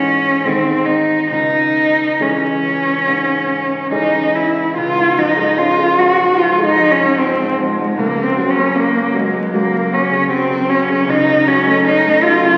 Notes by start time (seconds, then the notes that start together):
Already playing: G#2 E3 G#3 C#4
0.45 G#2 D#3 G#3 C4 D#4
0.86 D#4
1.31 C#2 D#4
2.20 E3 G#3 C#4
3.06 G#2
3.91 E3 G#3 C#4 D#4
4.35 E4
4.76 C#2 F4
4.97 G#2
5.17 F3 D#4
5.37 G#3
5.58 C#4 F4
5.78 G#3
5.98 F3 F#4
6.19 G#2
6.38 F3 F4
6.59 G#3
6.65 D#4
6.79 F3
6.91 C#4
6.99 G#2
7.18 F3 C4
7.39 G#2
7.59 F3 G#3
7.78 G#2
7.97 C#2 A#3
8.17 C#3
8.23 C4
8.37 F#3
8.50 C#4
8.55 A#3
8.75 A#3 C#4
8.94 A#3
9.13 F#3 G#3
9.33 C#3
9.53 F#3 A#3
9.72 A#3
9.92 F#3 C#4
10.10 C#3
10.29 F#3 C4
10.48 C#3
10.68 F#3 C#4
10.88 C#3
11.07 C#2 D#4
11.26 C#3
11.46 F#3 C#4
11.65 A3
11.85 C#4 D#4
12.05 A3
12.23 F#3 F4
12.42 C#3